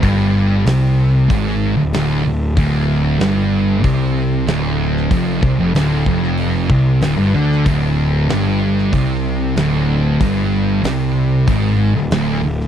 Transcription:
<<
  \new Staff \with { instrumentName = "Distorted electric guitar" } { \clef bass \time 4/4 \key d \minor \tempo 4 = 94 g,4 c4 gis,8. d,16 d,8 d,8 | d,4 g,4 c4 d,4 | f,8 c16 f,16 d,8 f,4 c8 d,16 g,16 d8 | d,4 g,4 c4 d,4 |
g,4 c4 gis,8. d,16 d,8 d,8 | }
  \new Staff \with { instrumentName = "Distorted electric guitar" } { \clef bass \time 4/4 \key d \minor g,4 c4 gis,8. d,16 d,8 d,8 | d,4 g,4 c4 d,4 | f,8 c16 f,16 d,8 f,4 c8 d,16 g,16 d8 | d,4 g,4 c4 d,4 |
g,4 c4 gis,8. d,16 d,8 d,8 | }
  \new Staff \with { instrumentName = "Picked electric bass" } { \clef bass \time 4/4 \key d \minor g,,4 c,4 gis,,8. d,,16 d,,8 d,,8 | d,,4 g,,4 c,4 d,,4 | f,,8 c,16 f,,16 d,,8 f,,4 c,8 d,,16 g,,16 d,8 | d,,4 g,,4 c,4 d,,4 |
g,,4 c,4 gis,,8. d,,16 d,,8 d,,8 | }
  \new DrumStaff \with { instrumentName = "Drums" } \drummode { \time 4/4 <hho bd>4 <hho sn>4 <hho bd>4 <hho sn>4 | <hho bd>4 <hho sn>4 <hho bd>4 <hho sn>8. sn16 | <hho bd>8 bd8 <hho sn>8 bd16 sn16 hho8 bd8 <hho sn>8. sn16 | <hho bd>4 <hho sn>8. sn16 <hho bd>4 <hho sn>4 |
<hho bd>4 <hho sn>4 <hho bd>4 <hho sn>8. sn16 | }
>>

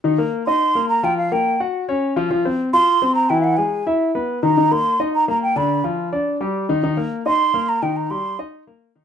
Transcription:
<<
  \new Staff \with { instrumentName = "Flute" } { \time 4/4 \key c \minor \tempo 4 = 212 r4. c'''4. bes''8 g''8 | f''8 g''4 r2 r8 | r4. c'''4. bes''8 g''16. f''32 | fis''8 gis''4 r2 bes''8~ |
bes''8 c'''4 r8 bes''8 bes''8 g''8 b''8~ | b''8 r2. r8 | r4. c'''4. bes''8 g''8 | bes''8 c'''4 r2 r8 | }
  \new Staff \with { instrumentName = "Grand piano" } { \time 4/4 \key c \minor <ees ees'>8 <bes bes'>4 <ees' ees''>4 <bes bes'>4 <f f'>8~ | <f f'>8 <bes bes'>4 <fis' fis''>4 <cis' cis''>4 <f f'>8 | <f f'>8 <c' c''>4 <f' f''>4 <c' c''>4 <e e'>8~ | <e e'>8 <gis gis'>4 <e' e''>4 <b b'>4 <ees ees'>8 |
<ees ees'>8 <bes bes'>4 <ees' ees''>4 <bes bes'>4 <d d'>8~ | <d d'>8 <f f'>4 <d' d''>4 <g g'>4 <ees ees'>8 | <ees ees'>8 <bes bes'>4 <ees' ees''>4 <bes bes'>4 <ees ees'>8~ | <ees ees'>8 <g g'>4 <ees' ees''>4 <bes bes'>4 <ees ees'>8 | }
>>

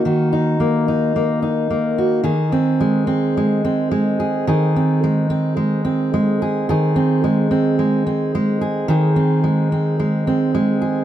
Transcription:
\new Staff \with { instrumentName = "Steel-string acoustic guitar" } { \time 4/4 \key aes \mixolydian \tempo 4 = 108 <ees bes ees' ges'>8 ees'8 bes8 ees'8 bes8 ees'8 bes8 ges'8 | <ees aes'>8 c'8 aes8 c'8 aes8 c'8 aes8 aes'8 | <ees aes'>8 c'8 aes8 c'8 aes8 c'8 aes8 aes'8 | <ees aes'>8 c'8 aes8 c'8 aes8 c'8 aes8 aes'8 |
<ees aes'>8 c'8 aes8 c'8 aes8 c'8 aes8 aes'8 | }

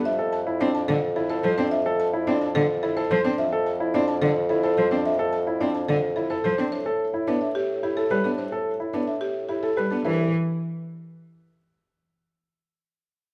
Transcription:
<<
  \new Staff \with { instrumentName = "Marimba" } { \time 3/4 \key c \major \tempo 4 = 108 e''16 r16 a''16 r16 d''16 a''16 a'16 r16 a'16 c''16 a'16 c''16 | e''16 r16 a''16 r16 d''16 a''16 a'16 r16 a'16 c''16 a'16 c''16 | e''16 r16 a''16 r16 d''16 a''16 a'16 r16 a'16 c''16 a'16 c''16 | e''16 r16 a''16 r16 d''16 a''16 a'16 r16 a'16 c''16 a'16 c''16 |
c''16 r8. b'16 e''16 g'16 r16 g'16 a'16 g'16 a'16 | c''16 r8. b'16 e''16 g'16 r16 g'16 a'16 g'16 a'16 | b'8 r2 r8 | r2. | }
  \new Staff \with { instrumentName = "Grand piano" } { \time 3/4 \key c \major r16 a'16 r16 e'16 d'16 r8. e'16 a'16 c''16 d'16 | r16 a'16 r16 e'16 d'16 r8. e'16 a'16 c''16 d'16 | r16 a'16 r16 e'16 d'16 r8. e'16 a'16 c''16 d'16 | r16 a'16 r16 e'16 d'16 r8. e'16 a'16 c''16 d'16 |
r16 a'16 r16 e'16 d'16 r8. e'16 a'16 b'16 d'16 | r16 a'16 r16 e'16 d'16 r8. e'16 a'16 b'16 d'16 | e'8 r2 r8 | r2. | }
  \new Staff \with { instrumentName = "Cello" } { \time 3/4 \key c \major r4 c'16 r16 d16 r8. f16 c'16 | r4 c'16 r16 d16 r8. f16 c'16 | r4 c'16 r16 d16 r8. f16 c'16 | r4 c'16 r16 d16 r8. f16 c'16 |
r4 b16 r4 r16 g16 b16 | r4 b16 r4 r16 g16 b16 | e8 r2 r8 | r2. | }
  \new Staff \with { instrumentName = "Bassoon" } { \clef bass \time 3/4 \key c \major f,2.~ | f,2. | f,2.~ | f,2. |
a,2.~ | a,2. | c,8 r2 r8 | r2. | }
>>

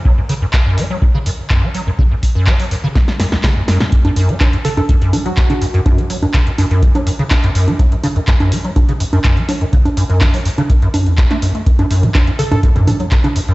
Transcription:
<<
  \new Staff \with { instrumentName = "Digital synth lead" } { \time 4/4 \key fis \minor \tempo 4 = 124 r1 | r1 | r4. a'16 a'16 r8. fis'4~ fis'16~ | fis'16 r2. r8. |
r1 | r1 | r4. a'16 a'16 r2 | }
  \new Staff \with { instrumentName = "Acid bass" } { \clef bass \time 4/4 \key fis \minor fis16 fis,16 cis16 fis,16 r16 fis,16 a16 fis16 fis,16 cis16 fis,16 r16 fis,16 a16 fis16 fis,16 | cis16 fis,16 r16 fis,16 a16 fis16 fis,16 cis16 fis,16 r16 fis,16 e,16 cis16 fis,16 fis,16 b,16 | fis,16 fis,16 fis,16 a16 fis16 fis,16 cis16 fis,16 fis,16 fis,16 a16 fis16 fis,16 cis16 fis,16 fis,16 | fis,16 a16 fis16 fis,16 cis16 fis,16 fis,16 fis,16 a16 fis16 fis,16 cis16 fis,16 fis,16 fis,16 a16 |
fis16 fis,16 cis16 fis,16 fis,16 fis,16 a16 fis16 fis,16 cis16 fis,16 fis,16 fis,16 a16 fis16 fis,16 | cis16 fis,16 fis,16 fis,16 a16 fis16 fis,16 cis16 fis,16 fis,16 fis,16 e,16 fis,,16 a16 fis,16 a16 | fis,16 fis,16 fis,16 a16 fis16 fis,16 cis16 fis,16 fis,16 fis,16 a16 fis16 fis,16 cis16 fis,16 fis,16 | }
  \new DrumStaff \with { instrumentName = "Drums" } \drummode { \time 4/4 bd8 hho8 <hc bd>8 hho8 bd8 hho8 <hc bd>8 hho8 | bd8 <hho bd>8 <hc bd>16 hho16 hho8 <bd sn>16 sn16 <hho sn>16 sn16 <hc hho bd sn>8 <hho sn>16 sn16 | <hh bd>16 <cgho hh>16 hho16 hh16 <hc cgho hh bd>16 hh16 hho16 <cgho hh>16 <hh bd>16 hh16 <cgho hho>16 hh16 <hc hh bd>16 <cgho hh>16 hho16 hh16 | <cgho hh bd>16 hh16 hho16 <cgho hh>16 <hc hh bd>16 hh16 <cgho hho>16 hh16 <hh bd>16 <cgho hh>16 hho16 hh16 <hc cgho hh bd>16 <hc hh>16 hho16 <cgho hh>16 |
<hh bd>16 hh16 <cgho hho>16 hh16 <hc hh bd>16 <cgho hh>16 hho16 hh16 <cgho hh bd>16 hh16 hho16 <cgho hh>16 <hc hh bd>16 hh16 <cgho hho>16 hh16 | <hh bd>16 <cgho hh>16 hho16 hh16 <hc cgho hh bd>16 hho16 hho16 <cgho hh>16 <hh bd>16 hh16 <cgho hho>16 hh16 <hc hh bd>16 <hc cgho hh>16 hho16 hh16 | <hh bd>16 <cgho hh>16 hho16 <hh toml>16 <hc cgho hh bd>16 hh16 hho16 <cgho hh toml>16 <hh bd>16 <hh toml>16 <cgho hho toml>16 hh16 <hc hh bd>16 <cgho hh>16 hho16 hh16 | }
>>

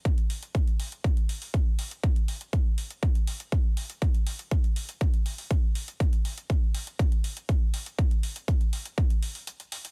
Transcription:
\new DrumStaff \with { instrumentName = "Drums" } \drummode { \time 4/4 \tempo 4 = 121 <hh bd>16 hh16 hho16 hh16 <hh bd>16 hh16 hho16 hh16 <hh bd>16 hh16 hho16 hho16 <hh bd>8 hho16 hh16 | <hh bd>16 hh16 hho16 hh16 <hh bd>8 hho16 hh16 <hh bd>16 hh16 hho16 hh16 <hh bd>8 hho16 hh16 | <hh bd>16 hh16 hho16 hh16 <hh bd>16 hh16 hho16 hh16 <hh bd>16 hh16 hho16 hho16 <hh bd>8 hho16 hh16 | <hh bd>16 hh16 hho16 hh16 <hh bd>8 hho16 hh16 <hh bd>16 hh16 hho16 hh16 <hh bd>8 hho16 hh16 |
<hh bd>16 hh16 hho16 hh16 <hh bd>16 hh16 hho16 hh16 <hh bd>16 hh16 hho16 hho16 hh16 hh16 hho16 hh16 | }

